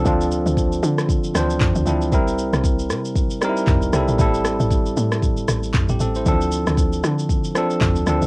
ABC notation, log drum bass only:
X:1
M:4/4
L:1/16
Q:"Swing 16ths" 1/4=116
K:Dm
V:1 name="Log drum bass" clef=bass
D,,3 D,,3 D,4 D,,2 z D,, D,,2 | C,,3 C,,3 C,4 z2 C,,2 C,, B,,, | A,,,3 A,,,3 A,,4 A,,,2 z A,,, A,,,2 | D,,3 D,,3 D,4 z2 D,,2 D,, C,, |]